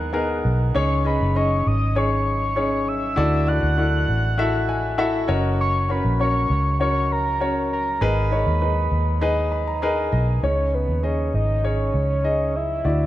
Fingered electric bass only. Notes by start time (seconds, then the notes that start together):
Already playing: D#2
0.45 B1
0.76 C#2
1.21 F#1
1.67 G#1
3.17 D2
3.63 D2
4.08 A1
5.29 F#1
6.05 A#1
6.50 C#2
8.01 G#1
8.46 D#2
8.92 D#2
10.13 B1
10.43 C#2
10.88 D#2
11.34 G#1
11.94 C#2
12.85 D2